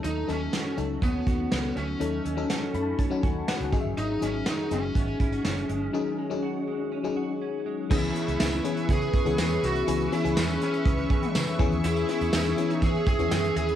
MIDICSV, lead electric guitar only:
0, 0, Header, 1, 2, 480
1, 0, Start_track
1, 0, Key_signature, 4, "minor"
1, 0, Tempo, 491803
1, 38, Time_signature, 4, 2, 24, 8
1, 13424, End_track
2, 0, Start_track
2, 0, Title_t, "Lead electric guitar"
2, 0, Program_c, 0, 29
2, 43, Note_on_c, 0, 63, 101
2, 288, Note_off_c, 0, 63, 0
2, 292, Note_on_c, 0, 61, 89
2, 732, Note_off_c, 0, 61, 0
2, 1009, Note_on_c, 0, 59, 90
2, 1478, Note_off_c, 0, 59, 0
2, 1490, Note_on_c, 0, 59, 89
2, 1720, Note_off_c, 0, 59, 0
2, 1724, Note_on_c, 0, 61, 90
2, 3122, Note_off_c, 0, 61, 0
2, 3887, Note_on_c, 0, 63, 107
2, 4126, Note_on_c, 0, 61, 95
2, 4130, Note_off_c, 0, 63, 0
2, 4368, Note_on_c, 0, 63, 101
2, 4369, Note_off_c, 0, 61, 0
2, 4610, Note_off_c, 0, 63, 0
2, 4612, Note_on_c, 0, 61, 89
2, 7206, Note_off_c, 0, 61, 0
2, 7728, Note_on_c, 0, 64, 101
2, 8200, Note_off_c, 0, 64, 0
2, 8211, Note_on_c, 0, 64, 97
2, 8690, Note_on_c, 0, 68, 101
2, 8699, Note_off_c, 0, 64, 0
2, 9131, Note_off_c, 0, 68, 0
2, 9172, Note_on_c, 0, 68, 104
2, 9411, Note_on_c, 0, 66, 98
2, 9412, Note_off_c, 0, 68, 0
2, 9892, Note_off_c, 0, 66, 0
2, 9896, Note_on_c, 0, 64, 92
2, 10133, Note_on_c, 0, 61, 91
2, 10134, Note_off_c, 0, 64, 0
2, 10366, Note_off_c, 0, 61, 0
2, 10378, Note_on_c, 0, 61, 77
2, 11049, Note_off_c, 0, 61, 0
2, 11569, Note_on_c, 0, 64, 94
2, 11798, Note_off_c, 0, 64, 0
2, 11810, Note_on_c, 0, 64, 91
2, 12038, Note_off_c, 0, 64, 0
2, 12049, Note_on_c, 0, 64, 93
2, 12410, Note_off_c, 0, 64, 0
2, 12410, Note_on_c, 0, 63, 93
2, 12529, Note_on_c, 0, 68, 107
2, 12538, Note_off_c, 0, 63, 0
2, 12758, Note_off_c, 0, 68, 0
2, 12769, Note_on_c, 0, 68, 106
2, 12998, Note_off_c, 0, 68, 0
2, 13010, Note_on_c, 0, 68, 102
2, 13227, Note_off_c, 0, 68, 0
2, 13245, Note_on_c, 0, 68, 100
2, 13424, Note_off_c, 0, 68, 0
2, 13424, End_track
0, 0, End_of_file